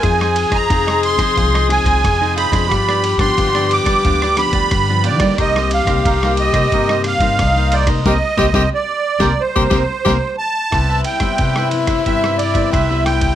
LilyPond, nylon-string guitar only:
\new Staff \with { instrumentName = "Nylon-string guitar" } { \time 4/4 \key c \minor \tempo 4 = 90 << { <c' ees' aes'>8. r16 <c' ees' aes'>8. <c' ees' aes'>8. <c' ees' aes'>8 r16 <c' ees' aes'>8 <f b d'>16~ | <f b d'>8. <f b d'>8 <f b d'>8. <f b d'>16 r16 <f b d'>8 r16 <f b d'>8 <g bes ees'>16~ | <g bes ees'>8. <g bes ees'>8 <g bes ees'>8 <g bes ees'>16 <g bes ees'>8. <g bes ees'>8 <g bes ees'>8 <g bes ees'>16 | <g bes c'>16 r16 <g bes c'>16 <g bes c'>16 r8. <g bes c'>16 r16 <g bes c'>16 <g bes c'>16 r16 <g bes c'>16 r8. |
\key c \major <g b e'>8. <g b e'>8. <g b e'>8 <g b e'>8 r16 <g b e'>8 <g b e'>8. | } \\ { f4 c4 f4 c4 | g,4 d4 g,4 d4 | c4 g,4 c4 g,4 | r1 |
c4 g,4 c4 g,4 | } >> }